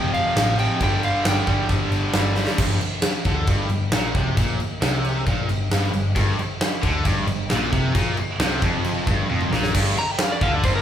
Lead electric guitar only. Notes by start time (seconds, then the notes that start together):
Already playing: G5
0.14 F5
0.60 G5
0.83 G5
1.04 F5
1.28 G5
9.98 A#5
10.11 G5
10.22 F5
10.32 D5
10.42 F5
10.55 D5
10.65 C5
10.76 A#4